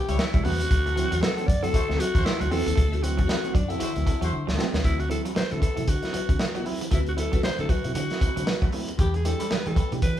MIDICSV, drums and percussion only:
0, 0, Header, 1, 2, 480
1, 0, Start_track
1, 0, Tempo, 517688
1, 657, Time_signature, 4, 2, 24, 8
1, 9457, End_track
2, 0, Start_track
2, 0, Title_t, "Drums"
2, 79, Note_on_c, 9, 42, 54
2, 172, Note_off_c, 9, 42, 0
2, 176, Note_on_c, 9, 38, 115
2, 269, Note_off_c, 9, 38, 0
2, 316, Note_on_c, 9, 36, 106
2, 319, Note_on_c, 9, 42, 34
2, 408, Note_off_c, 9, 36, 0
2, 412, Note_off_c, 9, 42, 0
2, 414, Note_on_c, 9, 46, 76
2, 506, Note_off_c, 9, 46, 0
2, 562, Note_on_c, 9, 42, 56
2, 655, Note_off_c, 9, 42, 0
2, 657, Note_on_c, 9, 36, 104
2, 657, Note_on_c, 9, 42, 81
2, 749, Note_off_c, 9, 36, 0
2, 750, Note_off_c, 9, 42, 0
2, 801, Note_on_c, 9, 42, 33
2, 894, Note_off_c, 9, 42, 0
2, 903, Note_on_c, 9, 42, 67
2, 995, Note_off_c, 9, 42, 0
2, 1038, Note_on_c, 9, 42, 55
2, 1130, Note_off_c, 9, 42, 0
2, 1139, Note_on_c, 9, 38, 104
2, 1231, Note_off_c, 9, 38, 0
2, 1278, Note_on_c, 9, 42, 34
2, 1371, Note_off_c, 9, 42, 0
2, 1374, Note_on_c, 9, 36, 89
2, 1385, Note_on_c, 9, 42, 68
2, 1467, Note_off_c, 9, 36, 0
2, 1477, Note_off_c, 9, 42, 0
2, 1517, Note_on_c, 9, 42, 45
2, 1609, Note_off_c, 9, 42, 0
2, 1612, Note_on_c, 9, 36, 85
2, 1614, Note_on_c, 9, 42, 84
2, 1705, Note_off_c, 9, 36, 0
2, 1706, Note_off_c, 9, 42, 0
2, 1766, Note_on_c, 9, 38, 34
2, 1855, Note_on_c, 9, 42, 89
2, 1858, Note_off_c, 9, 38, 0
2, 1947, Note_off_c, 9, 42, 0
2, 1993, Note_on_c, 9, 36, 96
2, 1997, Note_on_c, 9, 42, 57
2, 2086, Note_off_c, 9, 36, 0
2, 2090, Note_off_c, 9, 42, 0
2, 2096, Note_on_c, 9, 38, 107
2, 2189, Note_off_c, 9, 38, 0
2, 2236, Note_on_c, 9, 42, 36
2, 2329, Note_off_c, 9, 42, 0
2, 2331, Note_on_c, 9, 46, 77
2, 2424, Note_off_c, 9, 46, 0
2, 2482, Note_on_c, 9, 42, 59
2, 2573, Note_on_c, 9, 36, 113
2, 2574, Note_off_c, 9, 42, 0
2, 2575, Note_on_c, 9, 42, 75
2, 2666, Note_off_c, 9, 36, 0
2, 2667, Note_off_c, 9, 42, 0
2, 2717, Note_on_c, 9, 42, 34
2, 2810, Note_off_c, 9, 42, 0
2, 2815, Note_on_c, 9, 42, 68
2, 2908, Note_off_c, 9, 42, 0
2, 2952, Note_on_c, 9, 42, 46
2, 2957, Note_on_c, 9, 36, 72
2, 3045, Note_off_c, 9, 42, 0
2, 3050, Note_off_c, 9, 36, 0
2, 3053, Note_on_c, 9, 38, 102
2, 3146, Note_off_c, 9, 38, 0
2, 3191, Note_on_c, 9, 42, 33
2, 3284, Note_off_c, 9, 42, 0
2, 3289, Note_on_c, 9, 36, 84
2, 3295, Note_on_c, 9, 42, 66
2, 3382, Note_off_c, 9, 36, 0
2, 3387, Note_off_c, 9, 42, 0
2, 3430, Note_on_c, 9, 42, 43
2, 3523, Note_off_c, 9, 42, 0
2, 3526, Note_on_c, 9, 42, 89
2, 3619, Note_off_c, 9, 42, 0
2, 3669, Note_on_c, 9, 42, 37
2, 3762, Note_off_c, 9, 42, 0
2, 3771, Note_on_c, 9, 36, 89
2, 3774, Note_on_c, 9, 42, 86
2, 3864, Note_off_c, 9, 36, 0
2, 3866, Note_off_c, 9, 42, 0
2, 3915, Note_on_c, 9, 42, 56
2, 4007, Note_off_c, 9, 42, 0
2, 4160, Note_on_c, 9, 38, 71
2, 4252, Note_off_c, 9, 38, 0
2, 4255, Note_on_c, 9, 38, 92
2, 4348, Note_off_c, 9, 38, 0
2, 4398, Note_on_c, 9, 38, 97
2, 4490, Note_off_c, 9, 38, 0
2, 4491, Note_on_c, 9, 36, 88
2, 4491, Note_on_c, 9, 42, 74
2, 4584, Note_off_c, 9, 36, 0
2, 4584, Note_off_c, 9, 42, 0
2, 4633, Note_on_c, 9, 42, 33
2, 4726, Note_off_c, 9, 42, 0
2, 4735, Note_on_c, 9, 42, 62
2, 4828, Note_off_c, 9, 42, 0
2, 4872, Note_on_c, 9, 42, 43
2, 4965, Note_off_c, 9, 42, 0
2, 4971, Note_on_c, 9, 38, 99
2, 5064, Note_off_c, 9, 38, 0
2, 5110, Note_on_c, 9, 42, 35
2, 5203, Note_off_c, 9, 42, 0
2, 5210, Note_on_c, 9, 36, 84
2, 5215, Note_on_c, 9, 42, 68
2, 5302, Note_off_c, 9, 36, 0
2, 5308, Note_off_c, 9, 42, 0
2, 5350, Note_on_c, 9, 42, 43
2, 5443, Note_off_c, 9, 42, 0
2, 5448, Note_on_c, 9, 42, 82
2, 5450, Note_on_c, 9, 36, 77
2, 5541, Note_off_c, 9, 42, 0
2, 5543, Note_off_c, 9, 36, 0
2, 5585, Note_on_c, 9, 42, 35
2, 5599, Note_on_c, 9, 38, 34
2, 5678, Note_off_c, 9, 42, 0
2, 5692, Note_off_c, 9, 38, 0
2, 5692, Note_on_c, 9, 42, 79
2, 5784, Note_off_c, 9, 42, 0
2, 5832, Note_on_c, 9, 36, 94
2, 5834, Note_on_c, 9, 42, 50
2, 5925, Note_off_c, 9, 36, 0
2, 5927, Note_off_c, 9, 42, 0
2, 5929, Note_on_c, 9, 38, 109
2, 6022, Note_off_c, 9, 38, 0
2, 6074, Note_on_c, 9, 42, 37
2, 6166, Note_off_c, 9, 42, 0
2, 6173, Note_on_c, 9, 46, 71
2, 6266, Note_off_c, 9, 46, 0
2, 6317, Note_on_c, 9, 42, 53
2, 6409, Note_off_c, 9, 42, 0
2, 6411, Note_on_c, 9, 42, 77
2, 6413, Note_on_c, 9, 36, 88
2, 6504, Note_off_c, 9, 42, 0
2, 6505, Note_off_c, 9, 36, 0
2, 6550, Note_on_c, 9, 42, 32
2, 6642, Note_off_c, 9, 42, 0
2, 6655, Note_on_c, 9, 42, 70
2, 6747, Note_off_c, 9, 42, 0
2, 6794, Note_on_c, 9, 42, 44
2, 6799, Note_on_c, 9, 36, 72
2, 6887, Note_off_c, 9, 42, 0
2, 6891, Note_off_c, 9, 36, 0
2, 6893, Note_on_c, 9, 38, 96
2, 6985, Note_off_c, 9, 38, 0
2, 7033, Note_on_c, 9, 42, 31
2, 7126, Note_off_c, 9, 42, 0
2, 7131, Note_on_c, 9, 36, 84
2, 7135, Note_on_c, 9, 42, 62
2, 7224, Note_off_c, 9, 36, 0
2, 7228, Note_off_c, 9, 42, 0
2, 7272, Note_on_c, 9, 42, 43
2, 7364, Note_off_c, 9, 42, 0
2, 7372, Note_on_c, 9, 42, 86
2, 7465, Note_off_c, 9, 42, 0
2, 7512, Note_on_c, 9, 42, 33
2, 7526, Note_on_c, 9, 38, 36
2, 7605, Note_off_c, 9, 42, 0
2, 7615, Note_on_c, 9, 36, 82
2, 7618, Note_on_c, 9, 42, 80
2, 7619, Note_off_c, 9, 38, 0
2, 7708, Note_off_c, 9, 36, 0
2, 7711, Note_off_c, 9, 42, 0
2, 7761, Note_on_c, 9, 42, 54
2, 7853, Note_off_c, 9, 42, 0
2, 7854, Note_on_c, 9, 38, 111
2, 7947, Note_off_c, 9, 38, 0
2, 7993, Note_on_c, 9, 36, 88
2, 7993, Note_on_c, 9, 42, 36
2, 8086, Note_off_c, 9, 36, 0
2, 8086, Note_off_c, 9, 42, 0
2, 8088, Note_on_c, 9, 46, 77
2, 8181, Note_off_c, 9, 46, 0
2, 8237, Note_on_c, 9, 42, 51
2, 8329, Note_off_c, 9, 42, 0
2, 8333, Note_on_c, 9, 42, 77
2, 8335, Note_on_c, 9, 36, 101
2, 8426, Note_off_c, 9, 42, 0
2, 8427, Note_off_c, 9, 36, 0
2, 8476, Note_on_c, 9, 42, 31
2, 8568, Note_off_c, 9, 42, 0
2, 8578, Note_on_c, 9, 42, 69
2, 8670, Note_off_c, 9, 42, 0
2, 8715, Note_on_c, 9, 42, 51
2, 8808, Note_off_c, 9, 42, 0
2, 8816, Note_on_c, 9, 38, 98
2, 8908, Note_off_c, 9, 38, 0
2, 8955, Note_on_c, 9, 42, 35
2, 9048, Note_off_c, 9, 42, 0
2, 9053, Note_on_c, 9, 36, 95
2, 9057, Note_on_c, 9, 42, 74
2, 9146, Note_off_c, 9, 36, 0
2, 9150, Note_off_c, 9, 42, 0
2, 9197, Note_on_c, 9, 42, 42
2, 9290, Note_off_c, 9, 42, 0
2, 9292, Note_on_c, 9, 42, 83
2, 9294, Note_on_c, 9, 36, 82
2, 9384, Note_off_c, 9, 42, 0
2, 9386, Note_off_c, 9, 36, 0
2, 9457, End_track
0, 0, End_of_file